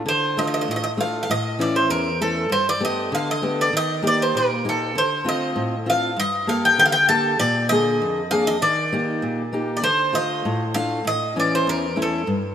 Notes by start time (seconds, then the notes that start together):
0.06 D3 C5
0.37 A3 D4 F4 D#5
0.47 D#5
0.54 D#5
0.61 D#5
0.68 A2 D#5
0.76 D#5
0.84 D#5
0.97 A3 D4 F4 F5
1.23 F5
1.30 A2 D#5
1.59 E3 C#4 E4 D5
1.76 C5
1.90 E2 A#4
2.21 A3 C#4 E4 A4
2.50 G2 C5
2.69 D5
2.80 A3 B3 G4
2.85 D#5
3.12 D3 F5
3.31 D#5
3.42 A3 B3 G4
3.61 D5
3.73 D#3 D#5
4.02 A#3 D#4 G4
4.07 D5
4.22 C5
4.35 A#2 A#4
4.65 A#3 D#4 G4
4.69 A4
4.95 D3 C5
5.24 A3 C4 F4
5.29 D#5
5.56 A2
5.86 C4 D4 F4 F5
6.16 G2 D#5
6.47 A#3 G4 A4 F5
6.65 G5
6.78 D3 G5
6.86 F5
6.92 G5
7.08 A#3 G4 A4 A5
7.39 A#2 D5
7.69 D3 A#3 G#4 D#5
8.02 F2
8.31 A#3 D4 G#4 F5
8.47 D#5
8.62 D#3 D5
8.92 A#3 D#4 G4
9.22 A#2
9.53 A#3 D#4 G4
9.77 D5
9.82 D3 C5
10.13 A3 F4 D#5
10.45 A2
10.74 A3 D4 F4 F5
11.05 A2 D#5
11.36 E3 C#4 E4 D5
11.55 C5
11.67 E2 A#4
11.96 A3 C#4 E4
12.02 A4
12.27 G2